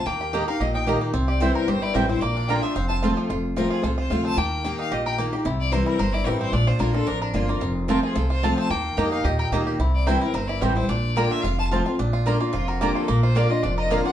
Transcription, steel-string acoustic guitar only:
\new Staff \with { instrumentName = "Steel-string acoustic guitar" } { \time 4/4 \key f \major \tempo 4 = 222 << { r4 <ees bes ees' g'>8 <ees' g'>8 r4 <ees bes ees' g'>4 | r4 <e g c' e'>4 r4 <e g c' e'>8 <c' e'>8 | r4 <d bes d' f'>8 <d' f'>8 r4 <f a c' f'>4 | r4 <f a c' f'>4 r4 <f a c' f'>4 |
r4 <ees bes ees' g'>4 r4 <ees bes ees' g'>8 <ees' g'>8 | r4 <e g c' e'>4 r4 <e g c' e'>4 | r4 <d bes d' f'>8 <d' f'>8 r4 <d bes d' f'>8 <d' f'>8 | r4 <f a c' f'>4 r4 <f a c' f'>4 |
r4 <ees bes ees' g'>4 r4 <ees bes ees' g'>4 | r4 <e g c' e'>8 <c' e'>8 r4 <e g c' e'>8 <c' e'>8 | r4 <d bes d' f'>4 r4 <f a c' f'>8 <c' f'>8 | \key bes \major r4 <d bes d' f'>8 <d' f'>8 r4 <d bes d' f'>4 |
r4 <d bes d' f'>8 <d' f'>8 r4 <d bes d' f'>8 <d' f'>8 | } \\ { ees2 bes,2 | c2 g,2 | bes,2 f,2 | f,2 c2 |
ees2 bes,2 | c2 g,2 | bes,2 f,2 | f,2 c2 |
r2 bes,2 | c2 g,2 | bes,2 f,2 | bes,2 f,2 |
bes,2 f,2 | } >> }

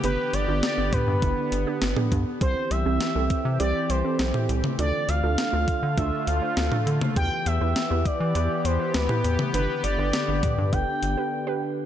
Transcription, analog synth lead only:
\new Staff \with { instrumentName = "Analog synth lead" } { \time 4/4 \key g \mixolydian \tempo 4 = 101 b'8 d''8 d''8 b'2 r8 | c''8 e''4. d''8 c''4 r8 | d''8 f''4. e''8 f''4 r8 | g''8 e''4 d''4 c''8 b'8. r16 |
b'8 d''4. g''4. r8 | }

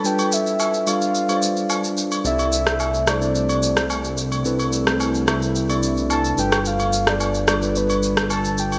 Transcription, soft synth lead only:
\new Staff \with { instrumentName = "Soft synth lead" } { \time 4/4 \key c \major \tempo 4 = 109 g''8 e''4 f''4. r4 | e''4. d''2 r8 | r2. a''8 g''8 | f''8. d''8. d''8 b'4 a''8 g''8 | }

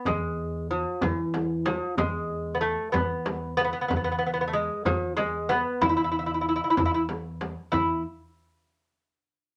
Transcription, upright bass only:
\new Staff \with { instrumentName = "Upright bass" } { \clef bass \time 6/8 \tempo 4. = 63 e,4. e,4. | e,4. e,4. | e,4. e,4. | e,4. e,4. |
e,8 r2 r8 | }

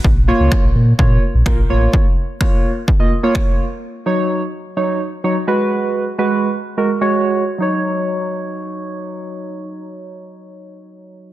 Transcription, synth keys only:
\new Staff \with { instrumentName = "Synth keys" } { \time 4/4 \key ees \minor \tempo 4 = 127 r8 <bes f' des''>8. r8. <bes f' des''>8 r8 <bes f' bes'>16 r16 <bes f' des''>8~ | <bes f' des''>16 r8. <bes f' des''>8. r8 <bes f' ees''>16 r16 <bes f' des''>4 r16 | r8 <ges ees' des''>8. r8. <ges ees' des''>8 r8 <ges ees' des''>16 r16 <aes ges' ces''>8~ | <aes ges' ces''>8. r16 <aes ges' ces''>8. r8 <aes ges' bes'>16 r16 <aes ges' des''>4 r16 |
<ges ees' des''>1~ | <ges ees' des''>1 | }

